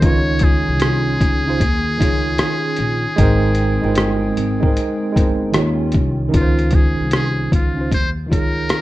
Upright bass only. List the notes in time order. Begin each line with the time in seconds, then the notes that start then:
0.02 C#2
0.68 C2
1.21 C#2
1.61 D#2
2.01 C#2
2.79 A#1
3.18 G#1
3.84 G1
4.37 G#1
5.16 G1
5.55 D#2
5.94 C2
6.34 C#2
6.99 C2
7.52 C#2
7.92 D#2
8.32 C#2